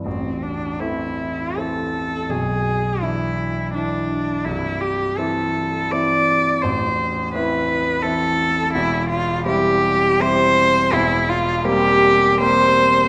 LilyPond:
<<
  \new Staff \with { instrumentName = "Cello" } { \time 3/4 \key a \minor \tempo 4 = 83 c'8 d'8 e'4 a'4 | gis'4 e'4 d'4 | e'8 g'8 a'4 d''4 | c''4 b'4 a'4 |
\key c \major e'8 f'8 g'4 c''4 | e'8 f'8 g'4 c''4 | }
  \new Staff \with { instrumentName = "Grand piano" } { \clef bass \time 3/4 \key a \minor <a,,, a,,>4 <e a c'>4 <e a c'>4 | <b,,, b,,>4 <e d' e'>4 <e d' e'>4 | <c,, c,>4 <e c' e'>4 <e c' e'>4 | <a,,, a,,>4 <e c' e'>4 <e c' e'>4 |
\key c \major <e,, e,>4 <g c' e'>4 <g c' e'>4 | <e,, e,>4 <g bes c'>4 <g bes c'>4 | }
>>